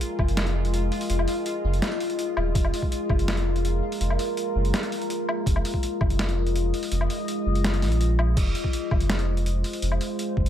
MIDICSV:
0, 0, Header, 1, 5, 480
1, 0, Start_track
1, 0, Tempo, 363636
1, 1447, Time_signature, 4, 2, 24, 8
1, 13851, End_track
2, 0, Start_track
2, 0, Title_t, "Ambient pad"
2, 0, Program_c, 0, 92
2, 0, Note_on_c, 0, 56, 76
2, 0, Note_on_c, 0, 65, 70
2, 0, Note_on_c, 0, 75, 85
2, 3351, Note_off_c, 0, 75, 0
2, 3367, Note_on_c, 0, 70, 84
2, 7193, Note_off_c, 0, 70, 0
2, 7216, Note_on_c, 0, 75, 88
2, 11000, Note_off_c, 0, 65, 0
2, 11002, Note_off_c, 0, 56, 0
2, 11037, Note_off_c, 0, 75, 0
2, 11051, Note_on_c, 0, 65, 71
2, 11054, Note_on_c, 0, 72, 84
2, 11055, Note_on_c, 0, 56, 76
2, 13851, Note_off_c, 0, 56, 0
2, 13851, Note_off_c, 0, 65, 0
2, 13851, Note_off_c, 0, 72, 0
2, 13851, End_track
3, 0, Start_track
3, 0, Title_t, "Synth texture"
3, 0, Program_c, 1, 99
3, 0, Note_on_c, 1, 65, 87
3, 11054, Note_off_c, 1, 65, 0
3, 13851, End_track
4, 0, Start_track
4, 0, Title_t, "Sub bass"
4, 0, Program_c, 2, 38
4, 250, Note_on_c, 2, 30, 104
4, 491, Note_on_c, 2, 29, 96
4, 510, Note_off_c, 2, 30, 0
4, 1194, Note_off_c, 2, 29, 0
4, 1448, Note_on_c, 2, 29, 102
4, 1669, Note_off_c, 2, 29, 0
4, 2168, Note_on_c, 2, 30, 101
4, 2389, Note_off_c, 2, 30, 0
4, 3129, Note_on_c, 2, 27, 87
4, 3349, Note_off_c, 2, 27, 0
4, 3364, Note_on_c, 2, 29, 97
4, 3587, Note_off_c, 2, 29, 0
4, 4089, Note_on_c, 2, 30, 102
4, 4328, Note_on_c, 2, 29, 96
4, 4348, Note_off_c, 2, 30, 0
4, 5033, Note_off_c, 2, 29, 0
4, 5288, Note_on_c, 2, 29, 100
4, 5509, Note_off_c, 2, 29, 0
4, 6012, Note_on_c, 2, 30, 104
4, 6231, Note_off_c, 2, 30, 0
4, 7212, Note_on_c, 2, 29, 100
4, 7431, Note_off_c, 2, 29, 0
4, 7931, Note_on_c, 2, 30, 101
4, 8173, Note_on_c, 2, 29, 96
4, 8193, Note_off_c, 2, 30, 0
4, 8875, Note_off_c, 2, 29, 0
4, 9131, Note_on_c, 2, 29, 100
4, 9350, Note_off_c, 2, 29, 0
4, 9851, Note_on_c, 2, 30, 99
4, 10333, Note_on_c, 2, 34, 89
4, 10353, Note_off_c, 2, 30, 0
4, 11035, Note_off_c, 2, 34, 0
4, 11045, Note_on_c, 2, 29, 103
4, 11267, Note_off_c, 2, 29, 0
4, 11766, Note_on_c, 2, 30, 102
4, 12011, Note_on_c, 2, 29, 99
4, 12031, Note_off_c, 2, 30, 0
4, 12714, Note_off_c, 2, 29, 0
4, 12967, Note_on_c, 2, 29, 100
4, 13188, Note_off_c, 2, 29, 0
4, 13687, Note_on_c, 2, 30, 105
4, 13851, Note_off_c, 2, 30, 0
4, 13851, End_track
5, 0, Start_track
5, 0, Title_t, "Drums"
5, 13, Note_on_c, 9, 42, 67
5, 145, Note_off_c, 9, 42, 0
5, 248, Note_on_c, 9, 36, 115
5, 254, Note_on_c, 9, 77, 36
5, 376, Note_on_c, 9, 42, 37
5, 380, Note_off_c, 9, 36, 0
5, 386, Note_off_c, 9, 77, 0
5, 491, Note_off_c, 9, 42, 0
5, 491, Note_on_c, 9, 38, 127
5, 491, Note_on_c, 9, 42, 84
5, 615, Note_off_c, 9, 42, 0
5, 615, Note_on_c, 9, 42, 39
5, 623, Note_off_c, 9, 38, 0
5, 747, Note_off_c, 9, 42, 0
5, 856, Note_on_c, 9, 42, 36
5, 972, Note_off_c, 9, 42, 0
5, 972, Note_on_c, 9, 42, 67
5, 1104, Note_off_c, 9, 42, 0
5, 1212, Note_on_c, 9, 46, 63
5, 1332, Note_off_c, 9, 46, 0
5, 1332, Note_on_c, 9, 46, 63
5, 1448, Note_on_c, 9, 42, 80
5, 1464, Note_off_c, 9, 46, 0
5, 1572, Note_on_c, 9, 77, 36
5, 1580, Note_off_c, 9, 42, 0
5, 1684, Note_on_c, 9, 46, 67
5, 1704, Note_off_c, 9, 77, 0
5, 1816, Note_off_c, 9, 46, 0
5, 1925, Note_on_c, 9, 42, 65
5, 2057, Note_off_c, 9, 42, 0
5, 2290, Note_on_c, 9, 42, 37
5, 2405, Note_off_c, 9, 42, 0
5, 2405, Note_on_c, 9, 38, 127
5, 2405, Note_on_c, 9, 42, 84
5, 2528, Note_off_c, 9, 42, 0
5, 2528, Note_on_c, 9, 42, 37
5, 2537, Note_off_c, 9, 38, 0
5, 2646, Note_on_c, 9, 46, 65
5, 2660, Note_off_c, 9, 42, 0
5, 2769, Note_on_c, 9, 42, 35
5, 2778, Note_off_c, 9, 46, 0
5, 2887, Note_off_c, 9, 42, 0
5, 2887, Note_on_c, 9, 42, 67
5, 3019, Note_off_c, 9, 42, 0
5, 3126, Note_on_c, 9, 77, 59
5, 3258, Note_off_c, 9, 77, 0
5, 3366, Note_on_c, 9, 36, 120
5, 3369, Note_on_c, 9, 42, 80
5, 3492, Note_on_c, 9, 77, 35
5, 3498, Note_off_c, 9, 36, 0
5, 3501, Note_off_c, 9, 42, 0
5, 3612, Note_on_c, 9, 46, 69
5, 3624, Note_off_c, 9, 77, 0
5, 3728, Note_on_c, 9, 36, 61
5, 3744, Note_off_c, 9, 46, 0
5, 3854, Note_on_c, 9, 42, 62
5, 3860, Note_off_c, 9, 36, 0
5, 3986, Note_off_c, 9, 42, 0
5, 4086, Note_on_c, 9, 36, 109
5, 4091, Note_on_c, 9, 77, 36
5, 4213, Note_on_c, 9, 42, 35
5, 4218, Note_off_c, 9, 36, 0
5, 4223, Note_off_c, 9, 77, 0
5, 4331, Note_off_c, 9, 42, 0
5, 4331, Note_on_c, 9, 38, 124
5, 4331, Note_on_c, 9, 42, 80
5, 4451, Note_off_c, 9, 42, 0
5, 4451, Note_on_c, 9, 42, 35
5, 4463, Note_off_c, 9, 38, 0
5, 4583, Note_off_c, 9, 42, 0
5, 4697, Note_on_c, 9, 42, 35
5, 4816, Note_off_c, 9, 42, 0
5, 4816, Note_on_c, 9, 42, 63
5, 4948, Note_off_c, 9, 42, 0
5, 5176, Note_on_c, 9, 46, 65
5, 5291, Note_on_c, 9, 42, 75
5, 5308, Note_off_c, 9, 46, 0
5, 5418, Note_on_c, 9, 77, 37
5, 5423, Note_off_c, 9, 42, 0
5, 5532, Note_on_c, 9, 46, 71
5, 5550, Note_off_c, 9, 77, 0
5, 5664, Note_off_c, 9, 46, 0
5, 5772, Note_on_c, 9, 42, 62
5, 5904, Note_off_c, 9, 42, 0
5, 6135, Note_on_c, 9, 42, 35
5, 6254, Note_off_c, 9, 42, 0
5, 6254, Note_on_c, 9, 38, 121
5, 6254, Note_on_c, 9, 42, 78
5, 6377, Note_off_c, 9, 42, 0
5, 6377, Note_on_c, 9, 42, 36
5, 6386, Note_off_c, 9, 38, 0
5, 6497, Note_on_c, 9, 46, 68
5, 6509, Note_off_c, 9, 42, 0
5, 6621, Note_on_c, 9, 42, 36
5, 6629, Note_off_c, 9, 46, 0
5, 6734, Note_off_c, 9, 42, 0
5, 6734, Note_on_c, 9, 42, 66
5, 6866, Note_off_c, 9, 42, 0
5, 6978, Note_on_c, 9, 77, 63
5, 7110, Note_off_c, 9, 77, 0
5, 7211, Note_on_c, 9, 36, 113
5, 7218, Note_on_c, 9, 42, 79
5, 7339, Note_on_c, 9, 77, 40
5, 7343, Note_off_c, 9, 36, 0
5, 7350, Note_off_c, 9, 42, 0
5, 7457, Note_on_c, 9, 46, 72
5, 7471, Note_off_c, 9, 77, 0
5, 7574, Note_on_c, 9, 36, 59
5, 7589, Note_off_c, 9, 46, 0
5, 7695, Note_on_c, 9, 42, 66
5, 7706, Note_off_c, 9, 36, 0
5, 7827, Note_off_c, 9, 42, 0
5, 7932, Note_on_c, 9, 36, 103
5, 7932, Note_on_c, 9, 77, 37
5, 8056, Note_on_c, 9, 42, 35
5, 8064, Note_off_c, 9, 36, 0
5, 8064, Note_off_c, 9, 77, 0
5, 8174, Note_off_c, 9, 42, 0
5, 8174, Note_on_c, 9, 38, 117
5, 8174, Note_on_c, 9, 42, 81
5, 8299, Note_off_c, 9, 42, 0
5, 8299, Note_on_c, 9, 42, 36
5, 8306, Note_off_c, 9, 38, 0
5, 8431, Note_off_c, 9, 42, 0
5, 8535, Note_on_c, 9, 42, 36
5, 8654, Note_off_c, 9, 42, 0
5, 8654, Note_on_c, 9, 42, 67
5, 8786, Note_off_c, 9, 42, 0
5, 8894, Note_on_c, 9, 46, 69
5, 9012, Note_off_c, 9, 46, 0
5, 9012, Note_on_c, 9, 46, 69
5, 9129, Note_on_c, 9, 42, 84
5, 9144, Note_off_c, 9, 46, 0
5, 9252, Note_on_c, 9, 77, 41
5, 9261, Note_off_c, 9, 42, 0
5, 9372, Note_on_c, 9, 46, 70
5, 9384, Note_off_c, 9, 77, 0
5, 9504, Note_off_c, 9, 46, 0
5, 9612, Note_on_c, 9, 42, 66
5, 9744, Note_off_c, 9, 42, 0
5, 9972, Note_on_c, 9, 42, 37
5, 10090, Note_off_c, 9, 42, 0
5, 10090, Note_on_c, 9, 38, 120
5, 10090, Note_on_c, 9, 42, 84
5, 10213, Note_off_c, 9, 42, 0
5, 10213, Note_on_c, 9, 42, 38
5, 10222, Note_off_c, 9, 38, 0
5, 10327, Note_on_c, 9, 38, 36
5, 10327, Note_on_c, 9, 46, 69
5, 10345, Note_off_c, 9, 42, 0
5, 10451, Note_on_c, 9, 42, 37
5, 10459, Note_off_c, 9, 38, 0
5, 10459, Note_off_c, 9, 46, 0
5, 10569, Note_off_c, 9, 42, 0
5, 10569, Note_on_c, 9, 42, 65
5, 10701, Note_off_c, 9, 42, 0
5, 10809, Note_on_c, 9, 77, 67
5, 10941, Note_off_c, 9, 77, 0
5, 11046, Note_on_c, 9, 36, 118
5, 11047, Note_on_c, 9, 42, 87
5, 11047, Note_on_c, 9, 49, 105
5, 11178, Note_off_c, 9, 36, 0
5, 11179, Note_off_c, 9, 42, 0
5, 11179, Note_off_c, 9, 49, 0
5, 11287, Note_on_c, 9, 46, 68
5, 11408, Note_on_c, 9, 36, 62
5, 11419, Note_off_c, 9, 46, 0
5, 11528, Note_on_c, 9, 42, 67
5, 11540, Note_off_c, 9, 36, 0
5, 11660, Note_off_c, 9, 42, 0
5, 11765, Note_on_c, 9, 36, 111
5, 11766, Note_on_c, 9, 77, 38
5, 11887, Note_on_c, 9, 42, 38
5, 11897, Note_off_c, 9, 36, 0
5, 11898, Note_off_c, 9, 77, 0
5, 12006, Note_off_c, 9, 42, 0
5, 12006, Note_on_c, 9, 38, 127
5, 12006, Note_on_c, 9, 42, 84
5, 12130, Note_off_c, 9, 42, 0
5, 12130, Note_on_c, 9, 42, 41
5, 12138, Note_off_c, 9, 38, 0
5, 12262, Note_off_c, 9, 42, 0
5, 12371, Note_on_c, 9, 42, 39
5, 12490, Note_off_c, 9, 42, 0
5, 12490, Note_on_c, 9, 42, 71
5, 12622, Note_off_c, 9, 42, 0
5, 12728, Note_on_c, 9, 46, 67
5, 12849, Note_off_c, 9, 46, 0
5, 12849, Note_on_c, 9, 46, 67
5, 12968, Note_on_c, 9, 42, 87
5, 12981, Note_off_c, 9, 46, 0
5, 13090, Note_on_c, 9, 77, 38
5, 13100, Note_off_c, 9, 42, 0
5, 13210, Note_on_c, 9, 46, 65
5, 13222, Note_off_c, 9, 77, 0
5, 13342, Note_off_c, 9, 46, 0
5, 13452, Note_on_c, 9, 42, 68
5, 13584, Note_off_c, 9, 42, 0
5, 13688, Note_on_c, 9, 36, 67
5, 13808, Note_on_c, 9, 42, 38
5, 13820, Note_off_c, 9, 36, 0
5, 13851, Note_off_c, 9, 42, 0
5, 13851, End_track
0, 0, End_of_file